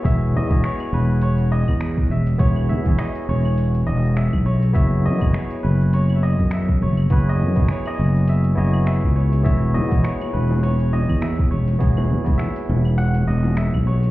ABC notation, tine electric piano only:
X:1
M:4/4
L:1/16
Q:"Swing 16ths" 1/4=102
K:Elyd
V:1 name="Tine electric piano"
[B,EFGc]3 [B,EFGc]12- [B,EFGc] | [B,EFGc]3 [B,EFGc]12- [B,EFGc] | [B,EFGc]3 [B,EFGc]12- [B,EFGc] | [B,EFGc]3 [B,EFGc]6- [B,EFGc] [B,EFGc]6 |
[B,EFGc]3 [B,EFGc]12- [B,EFGc] | [B,EFGc]3 [B,EFGc]12- [B,EFGc] |]